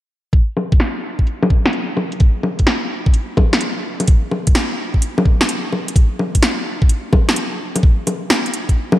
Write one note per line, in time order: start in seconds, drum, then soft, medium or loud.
0.33 kick loud
0.33 closed hi-hat medium
0.57 low bongo soft
0.72 kick loud
0.72 closed hi-hat medium
0.80 snare medium
0.80 closed hi-hat medium
1.19 kick medium
1.27 closed hi-hat medium
1.43 low bongo medium
1.50 kick medium
1.66 snare medium
1.66 closed hi-hat soft
1.73 closed hi-hat soft
1.97 low bongo soft
2.12 closed hi-hat medium
2.20 kick loud
2.20 closed hi-hat soft
2.43 low bongo soft
2.59 kick medium
2.59 closed hi-hat soft
2.67 snare loud
2.67 closed hi-hat medium
3.06 kick loud
3.14 closed hi-hat medium
3.37 kick loud
3.37 low bongo soft
3.53 snare loud
3.53 closed hi-hat soft
3.61 closed hi-hat medium
4.00 closed hi-hat medium
4.00 low bongo soft
4.08 kick loud
4.08 closed hi-hat soft
4.31 low bongo soft
4.47 kick loud
4.47 closed hi-hat medium
4.55 snare loud
4.55 closed hi-hat medium
4.94 kick medium
5.02 closed hi-hat medium
5.18 low bongo medium
5.25 kick loud
5.41 snare loud
5.41 closed hi-hat soft
5.49 closed hi-hat medium
5.72 low bongo soft
5.88 closed hi-hat soft
5.96 kick loud
5.96 closed hi-hat soft
6.19 low bongo soft
6.35 kick medium
6.35 closed hi-hat medium
6.43 snare loud
6.43 closed hi-hat medium
6.82 kick loud
6.89 closed hi-hat medium
7.13 kick loud
7.13 low bongo soft
7.29 snare loud
7.29 closed hi-hat soft
7.36 closed hi-hat medium
7.76 closed hi-hat medium
7.76 low bongo soft
7.83 kick loud
8.07 closed hi-hat medium
8.07 low bongo soft
8.30 snare loud
8.46 closed hi-hat soft
8.54 closed hi-hat medium
8.69 kick medium
8.69 closed hi-hat soft
8.92 low bongo medium